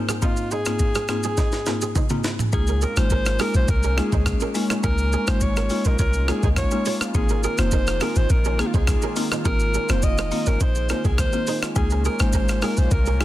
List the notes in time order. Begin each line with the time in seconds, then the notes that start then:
Already playing: G#2 A#3 C4 D#4 F4
0.09 C4 G#4, cross-stick, shaker
0.22 G#2 A#3 C4 D#4 F4 C5, kick, shaker
0.37 shaker
0.51 D#4 G#4 C5, shaker
0.66 G#2 A#3 C4 D#4 F4, cross-stick, shaker
0.79 kick, shaker
0.95 C4 G#4, cross-stick, shaker
1.08 G#2 A#3 C4 D#4 F4 G#4, cross-stick, shaker
1.24 C4 G#4, shaker
1.38 D#4 C5, kick, snare, shaker
1.52 snare, shaker
1.66 G#2 A#3 C4 C#4 D#4 F4 A#4, snare, shaker
1.82 C4 G#4, shaker
1.95 D#4 C5, kick, mid tom, shaker
2.10 G#2 A#3 C4 D#4 F4, mid tom, shaker
2.24 snare, shaker
2.39 floor tom, shaker
2.53 C#2 G#3 A#3 C#4 D#4 F4 G#4, kick, shaker
2.68 C#4 A#4, shaker
2.82 C4 G#4 A#4, shaker
2.97 G#1 G#3 A#3 D#4 F4 C5, cross-stick, shaker
3.10 C#4 A#4, kick, shaker
3.26 cross-stick, shaker
3.39 G#3 A#3 C4 D#4 F4 G#4 A#4, cross-stick, open hi-hat, shaker
3.54 A#1 C5, shaker
3.68 C2 A#4, kick, shaker
3.83 C#4 A#4, shaker
3.97 G#3 A#3 D#4 F4 G#4, cross-stick
4.12 C#2 D#4 C5, kick, shaker
4.26 kick, cross-stick, shaker
4.41 C#4 A#4, shaker
4.55 G#3 A#3 D#4 F4, open hi-hat, shaker
4.70 F4 C#5, cross-stick, shaker
4.84 C#2 G#3 A#3 C#4 D#4 F4 A#4, kick, shaker
4.98 shaker
5.13 C4 G#4, shaker
5.27 G#1 G#3 A#3 D#4 F4 C5, cross-stick, shaker
5.41 C#5, kick, shaker
5.57 C#4 A#4, cross-stick, shaker
5.70 G#3 A#3 D#4 F4, open hi-hat, shaker
5.85 A#1 D#4 A#4 C5, shaker
5.99 C2 F4 A#4 C#5, kick, shaker
6.14 shaker
6.28 G#3 A#3 C#4 D#4 F4 G#4 A#4, cross-stick
6.43 C#2 D#4 G#4 C5, kick, shaker
6.56 C#5, kick, cross-stick, shaker
6.71 G#3 A#3 D#4 F4, shaker
6.86 F4 C#5, open hi-hat, shaker
7.01 cross-stick, shaker
7.14 G#1 D#3 G#3 A#3 C4 D#4 F4 G#4, kick, shaker
7.29 C#4 A#4, shaker
7.44 C4 G#4 A#4, shaker
7.58 F1 A#3 C4 D#4 F4 C5, cross-stick, shaker
7.72 D#4 A#4, kick, shaker
7.87 cross-stick, shaker
8.01 A#3 C4 D#4 F4 G#4 A#4, cross-stick, open hi-hat, shaker
8.16 G#1 C5, shaker
8.30 A#1 A#4, kick, shaker
8.45 C#4 A#4, shaker
8.59 A#3 C4 D#4 F4 G#4, cross-stick
8.67 F4
8.74 C2 D#4 G#4 C5, kick, shaker
8.87 kick, cross-stick, shaker
9.02 C#4 A#4, shaker
9.16 A#3 C4 D#4 F4, open hi-hat, shaker
9.32 D#4 C5, cross-stick, shaker
9.45 G#1 A#3 C4 D#4 F4 G#4 A#4, kick, shaker
9.60 shaker
9.74 C#4 A#4, shaker
9.89 F1 A#3 C4 D#4 F4 C5, cross-stick, shaker
10.03 D#5, kick, shaker
10.18 D#4 C5, cross-stick, shaker
10.32 A#3 C4 D#4 F4, open hi-hat, shaker
10.47 G#1 C#4 A#4, shaker
10.61 A#1 D#4 C5, kick, shaker
10.76 shaker
10.90 A#3 C4 C#4 D#4 F4 A#4 C5, cross-stick, shaker
11.05 C2 C4 G#4, kick, shaker
11.18 C5, kick, cross-stick, shaker
11.33 A#3 C4 D#4 F4, shaker
11.47 D#4 C5, open hi-hat, shaker
11.63 cross-stick, shaker
11.76 C#2 G#3 A#3 C#4 D#4 F4 G#4, kick, shaker
11.91 C#4 A#4, shaker
12.05 C4 G#4 A#4, shaker
12.20 G#1 G#3 A#3 D#4 F4 C5, cross-stick, shaker
12.33 C#4 A#4, kick, shaker
12.49 cross-stick, shaker
12.62 G#3 A#3 C4 D#4 F4 G#4 A#4, cross-stick, open hi-hat, shaker
12.77 A#1 C5, shaker
12.91 C2 A#4, kick, shaker
13.06 C#4 A#4, shaker
13.20 G#3 A#3 D#4 F4 G#4, cross-stick